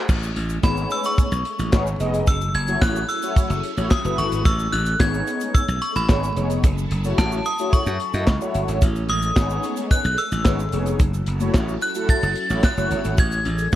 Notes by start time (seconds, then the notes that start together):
0.09 A1 G#3 A3 C#4, kick, crash, shaker
0.23 closed hi-hat, shaker
0.36 A1, closed hi-hat
0.49 closed hi-hat, shaker
0.63 G#1 B3 D#4 G#4 C#5 B5, kick, snare, clap, shaker
0.77 closed hi-hat, shaker
0.90 E6, closed hi-hat, shaker
1.04 C#6, closed hi-hat, shaker
1.18 kick, closed hi-hat, shaker
1.32 B1, shaker
1.45 closed hi-hat
1.59 A1, closed hi-hat, shaker
1.72 G#1 B3 D#4 G#4 C#5, kick, snare, clap, shaker
1.87 shaker
2.00 F1 B3 D#4 G#4 D#5, closed hi-hat, shaker
2.14 closed hi-hat, shaker
2.27 F#1 F#3 E4 G#4 A4 E6, kick, closed hi-hat, shaker
2.41 closed hi-hat, shaker
2.54 F#1 G#6, closed hi-hat
2.68 A3 E4 F#4 C#5, closed hi-hat, shaker
2.81 A1 F#6, kick, snare, clap, shaker
2.95 closed hi-hat, shaker
3.09 E6, closed hi-hat, shaker
3.22 A3 E4 F#4 C#5, closed hi-hat, shaker
3.36 kick, closed hi-hat, shaker
3.50 F#1, closed hi-hat, shaker
3.63 closed hi-hat
3.77 A1 A3 E4 F#4 C#5, closed hi-hat, shaker
3.91 D#6, kick, snare, clap, shaker
4.04 F#1 A3 E4 F#4 B4, closed hi-hat, shaker
4.18 G1 C#6, closed hi-hat, shaker
4.32 G#1, closed hi-hat, shaker
4.45 A1 G#3 A3 E6, kick, closed hi-hat, shaker
4.59 shaker
4.72 A1 F#6, closed hi-hat
4.86 closed hi-hat, shaker
4.99 G#1 B3 D#4 G#4 C#5 G#6, kick, snare, clap, shaker
5.14 shaker
5.27 closed hi-hat, shaker
5.41 closed hi-hat, shaker
5.54 E6, kick, closed hi-hat, shaker
5.68 B1, closed hi-hat, shaker
5.81 C#6, closed hi-hat
5.96 A1 B5, closed hi-hat, shaker
6.09 G#1 B3 D#4 G#4 C#5, kick, snare, clap, shaker
6.23 closed hi-hat, shaker
6.36 F1 B3 D#4 G#4 C#5, closed hi-hat, shaker
6.50 closed hi-hat, shaker
6.64 F#1 F#3 C#4 E4 G#4 A4, kick, closed hi-hat, shaker
6.78 shaker
6.91 F#1, closed hi-hat
7.04 A3 E4 F#4 C#5, closed hi-hat, shaker
7.18 A1 A5, kick, snare, clap, shaker
7.32 shaker
7.45 D#6, closed hi-hat, shaker
7.58 A3 E4 F#4 C#5, closed hi-hat, shaker
7.73 C#6, kick, closed hi-hat, shaker
7.86 F#2, closed hi-hat, shaker
8.00 closed hi-hat
8.14 F#2 A3 E4 F#4 D#5, closed hi-hat, shaker
8.27 C#2, kick, snare, clap, shaker
8.41 A3 E4 F#4 C#5, shaker
8.54 G1, closed hi-hat, shaker
8.68 G#1, closed hi-hat, shaker
8.82 A1 G#3 A3, kick, closed hi-hat, shaker
8.96 closed hi-hat, shaker
9.09 A1 D#6, closed hi-hat
9.22 closed hi-hat, shaker
9.36 G#1 B3 D#4 G#4 C#5, kick, snare, clap, shaker
9.50 shaker
9.63 closed hi-hat, shaker
9.77 closed hi-hat, shaker
9.91 F#6, kick, closed hi-hat, shaker
10.04 B1, closed hi-hat, shaker
10.18 E6, closed hi-hat
10.32 A1, closed hi-hat, shaker
10.45 G#1 B3 D#4 G#4 C#5, kick, snare, clap, shaker
10.59 closed hi-hat, shaker
10.72 F1 B3 D#4 G#4 C#5, closed hi-hat, shaker
10.86 closed hi-hat, shaker
10.99 F#1 F#3 C#4 E4 F#4 A4, kick, closed hi-hat, shaker
11.13 closed hi-hat, shaker
11.26 F#1, closed hi-hat
11.40 A3 E4 F#4 C#5, closed hi-hat, shaker
11.54 A1, kick, snare, clap, shaker
11.68 shaker
11.81 F#6, closed hi-hat, shaker
11.95 A3 E4 F#4 A4, closed hi-hat, shaker
12.09 A6, kick, closed hi-hat, shaker
12.23 F#1, shaker
12.35 closed hi-hat
12.50 A1 A3 E4 F#4 C#5, closed hi-hat, shaker
12.63 F#6, kick, snare, clap, shaker
12.77 F#1 A3 E4 F#4 C#5, shaker
12.91 G1, closed hi-hat, shaker
13.05 G#1, closed hi-hat, shaker
13.18 A1 G#3 A3 G#6, kick, closed hi-hat, shaker
13.32 closed hi-hat, shaker
13.45 A1, closed hi-hat
13.58 closed hi-hat, shaker
13.72 B3